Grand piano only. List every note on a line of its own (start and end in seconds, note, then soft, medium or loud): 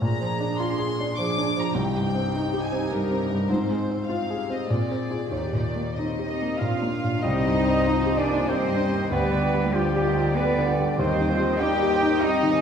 0.02 1.71 A#2 soft
0.20 0.52 F3 soft
0.41 0.72 D4 soft
0.60 0.91 F4 soft
0.79 1.10 G#4 soft
1.00 1.30 D4 soft
1.18 1.49 F3 soft
1.38 1.68 D4 soft
1.57 1.76 F3 soft
1.75 3.45 C2 medium
1.95 2.26 G2 soft
2.15 2.45 C4 soft
2.35 2.65 D#4 soft
2.54 2.84 G4 soft
2.72 3.03 C4 soft
2.92 3.22 G2 soft
3.10 3.41 C4 soft
3.30 3.49 G2 soft
3.50 4.65 G#2 medium
3.70 4.01 G#3 soft
3.91 4.21 C4 soft
4.09 4.41 F4 soft
4.30 4.61 G#4 soft
4.50 4.69 C4 soft
4.70 5.30 A#2 soft
4.91 5.24 C4 soft
5.11 5.30 F4 soft
5.11 5.30 G#4 soft
5.31 7.20 D#2 soft
5.53 5.88 A#2 soft
5.76 6.10 A#3 soft
5.99 6.32 D#4 soft
6.19 6.52 G4 soft
6.42 6.74 A#3 soft
6.61 6.95 A#2 soft
6.82 7.16 A#3 soft
7.04 7.25 A#2 soft
7.25 9.08 C2 soft
7.46 7.79 G2 soft
7.67 8.00 C4 soft
7.86 8.20 D#4 soft
8.06 8.40 G4 soft
8.28 8.62 D#4 soft
8.48 8.82 C4 soft
8.68 9.03 G2 soft
8.88 9.10 C4 soft
9.11 10.95 D2 soft
9.32 9.65 D3 soft
9.54 9.87 G3 soft
9.75 10.08 F4 soft
9.96 10.29 G4 soft
10.16 10.49 F4 soft
10.39 10.71 G3 soft
10.58 10.91 D3 soft
10.80 11.00 G3 soft
10.99 12.61 D#2 medium
11.21 11.54 D#3 soft
11.40 11.73 G3 soft
11.61 11.94 D#4 soft
11.83 12.15 G4 soft
12.03 12.35 D#4 soft
12.23 12.55 G3 soft
12.43 12.61 D#3 soft